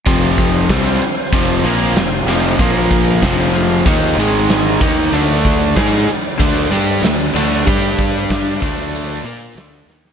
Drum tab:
HH |x-x-x-x-x-x-x-x-|x-x-x-x-x-x-x-x-|x-x-x-x-x-x-x-x-|x-x-x-x-x-x-x---|
SD |----o-------o---|----o-------o---|----o-------o---|----o-------o-oo|
BD |o-o-o---o-------|o-o-o---o-----o-|--o-o---o-------|o-o-o-o---------|